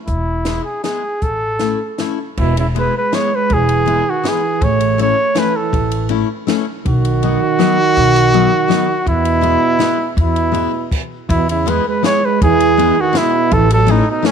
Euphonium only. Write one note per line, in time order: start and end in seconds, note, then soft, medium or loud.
2.39 2.57 B2 medium
2.58 2.66 C#3 medium
2.77 2.94 G#3 medium
2.97 3.15 G#3 medium
3.15 3.36 G#3 medium
3.36 3.56 G#3 medium
3.55 4.11 E3 medium
4.10 4.29 D#3 medium
4.27 4.64 E3 medium
4.63 4.99 A3 loud
5.02 5.40 A3 medium
5.39 5.58 E3 medium
5.58 6.11 E3 medium
6.86 9.03 D#3 loud
9.09 10.15 B2 loud
10.21 10.90 B2 medium
11.31 11.48 B2 medium
11.50 11.70 C#3 medium
11.68 11.86 G#3 medium
11.87 12.03 G#3 medium
12.06 12.24 G#3 medium
12.24 12.42 G#3 medium
12.42 13.01 E3 loud
12.99 13.20 D#3 medium
13.19 13.56 B2 medium
13.55 13.72 E3 loud
13.72 13.91 F#3 medium
13.90 14.08 A2 medium
14.09 14.28 B2 medium
14.27 14.31 A2 medium